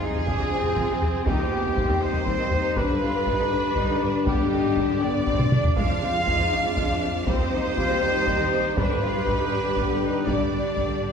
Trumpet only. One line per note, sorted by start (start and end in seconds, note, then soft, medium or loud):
0.00 1.22 G#4 medium
1.26 2.03 G4 medium
2.02 2.78 C5 medium
2.77 4.26 B4 medium
4.27 5.03 G4 medium
5.02 5.76 D5 medium
5.77 6.96 F5 loud
7.27 8.73 C5 loud
8.77 10.24 B4 loud
10.27 11.12 D5 medium